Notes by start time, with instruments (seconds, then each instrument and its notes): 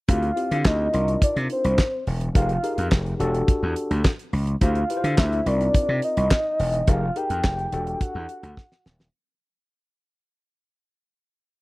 0.08 slap bass D2, tine electric piano C4 E4 F4 G4, soft synth lead F5, kick, closed hi-hat
0.22 closed hi-hat
0.36 tine electric piano C4 E4 F4 G4, closed hi-hat
0.51 slap bass D3, closed hi-hat
0.65 slap bass D2, soft synth lead D#5, kick, snare, clap
0.93 slap bass C2, tine electric piano D4 D#4 F4 A#4, closed hi-hat
1.08 closed hi-hat
1.22 soft synth lead D5, kick, closed hi-hat
1.36 slap bass C3, closed hi-hat
1.50 soft synth lead C5, closed hi-hat
1.64 slap bass C2, closed hi-hat
1.78 kick, snare, clap
2.07 slap bass E1, open hi-hat
2.21 closed hi-hat
2.35 slap bass F1, tine electric piano D#4 G4 G#4 A#4, soft synth lead F5, kick, closed hi-hat
2.49 closed hi-hat
2.63 tine electric piano D#4 G4 G#4 A#4, closed hi-hat
2.78 slap bass F2, closed hi-hat
2.92 slap bass F1, kick, snare, clap
3.06 closed hi-hat
3.20 slap bass E1, tine electric piano D4 F#4 G4 A4, closed hi-hat
3.34 closed hi-hat
3.48 muted slap bass stroke, kick, closed hi-hat
3.63 slap bass E2
3.76 closed hi-hat
3.91 slap bass D2, closed hi-hat
4.05 kick, snare, clap
4.19 closed hi-hat
4.33 slap bass C#2, open hi-hat
4.47 closed hi-hat
4.61 slap bass D2, tine electric piano E4 F4 G4 C5, soft synth lead F5, kick, closed hi-hat
4.75 closed hi-hat
4.90 tine electric piano E4 F4 G4 B4, closed hi-hat
4.97 tine electric piano C5
5.04 slap bass D3, closed hi-hat
5.18 slap bass D2, soft synth lead E5, kick, snare, clap
5.33 closed hi-hat
5.46 slap bass C2, tine electric piano C4 D#4 F4 A#4, soft synth lead D5, closed hi-hat
5.61 closed hi-hat
5.74 kick, closed hi-hat
5.89 slap bass C3
6.02 soft synth lead D#5, closed hi-hat
6.17 slap bass C2, closed hi-hat
6.31 kick, snare, clap
6.59 slap bass E1, open hi-hat
6.74 closed hi-hat
6.87 slap bass F1, tine electric piano D#4 G4 G#4 A#4, soft synth lead F5, kick, closed hi-hat
7.16 tine electric piano D#4 G4 G#4 A#4, soft synth lead G5, closed hi-hat
7.30 slap bass F2, closed hi-hat
7.44 slap bass F1, kick, snare, clap
7.59 closed hi-hat
7.72 slap bass E1, tine electric piano D4 F#4 G4 A4, closed hi-hat
7.87 closed hi-hat
8.01 soft synth lead F#5, muted slap bass stroke, kick, closed hi-hat
8.15 slap bass E2
8.29 closed hi-hat
8.43 slap bass D2, closed hi-hat
8.57 kick, snare
8.72 snare
8.86 slap bass D#1, snare
9.00 snare